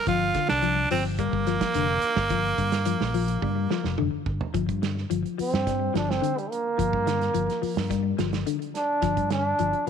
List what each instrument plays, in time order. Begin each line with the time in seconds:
0.07 fingered electric bass G1, clean electric guitar F3, tenor saxophone F4, kick, snare, closed hi-hat
0.34 clean electric guitar D3, kick, snare, closed hi-hat
0.49 fingered electric bass C2, tenor saxophone D4, snare
0.62 clean electric guitar F3, closed hi-hat
0.91 fingered electric bass G1, clean electric guitar F3, tenor saxophone C4, open hi-hat
1.19 clean electric guitar G3, tenor saxophone A#3, kick, closed hi-hat
1.33 fingered electric bass G1, kick
1.47 clean electric guitar F3, snare, closed hi-hat
1.61 kick, snare, closed hi-hat
1.74 fingered electric bass F1, clean electric guitar D3, snare, closed hi-hat
2.02 muted fingered electric bass stroke, closed hi-hat
2.16 fingered electric bass G1, kick, snare
2.30 clean electric guitar F3, kick, closed hi-hat
2.58 fingered electric bass G2, clean electric guitar D3, kick, closed hi-hat
2.72 snare, closed hi-hat
2.85 clean electric guitar F3, closed hi-hat
3.01 fingered electric bass A#1, snare
3.14 clean electric guitar F3, open hi-hat
3.28 closed hi-hat
3.42 fingered electric bass G2, clean electric guitar G3, kick, high tom
3.70 clean electric guitar F3, snare
3.84 fingered electric bass F1, snare
3.98 clean electric guitar D3, mid tom
4.26 fingered electric bass G1, kick
4.41 floor tom
4.54 fingered electric bass G1, clean electric guitar F3, kick, closed hi-hat
4.69 fingered electric bass G2, kick, closed hi-hat
4.82 clean electric guitar D3, snare, closed hi-hat
4.97 snare
5.10 fingered electric bass G1, clean electric guitar F3, closed hi-hat
5.26 closed hi-hat
5.38 clean electric guitar F3, trombone C4, muted fingered electric bass stroke, open hi-hat
5.54 fingered electric bass G2, snare, closed hi-hat
5.67 clean electric guitar G3, kick, snare, closed hi-hat
5.94 fingered electric bass G1, clean electric guitar F3, trombone D4, snare, closed hi-hat
6.10 trombone C4, snare
6.22 clean electric guitar D3, closed hi-hat
6.38 trombone G3, closed hi-hat
6.50 trombone A#3, closed hi-hat
6.78 fingered electric bass G1, clean electric guitar F3, kick, closed hi-hat
6.93 fingered electric bass G2, kick
7.06 clean electric guitar D3, snare, closed hi-hat
7.21 snare, closed hi-hat
7.34 fingered electric bass G1, clean electric guitar F3, closed hi-hat
7.50 snare, closed hi-hat
7.62 clean electric guitar F3, muted fingered electric bass stroke, open hi-hat
7.77 fingered electric bass G2, snare
7.90 clean electric guitar G3, kick, snare, closed hi-hat
8.18 fingered electric bass G1, clean electric guitar F3, snare, closed hi-hat
8.33 snare, closed hi-hat
8.46 clean electric guitar D3, closed hi-hat
8.62 closed hi-hat
8.75 trombone D4, snare, closed hi-hat
9.02 fingered electric bass G1, clean electric guitar F3, kick, snare, closed hi-hat
9.17 fingered electric bass G2, kick, closed hi-hat
9.30 clean electric guitar D3, trombone D4, snare, closed hi-hat
9.59 fingered electric bass G1, clean electric guitar F3, closed hi-hat
9.73 closed hi-hat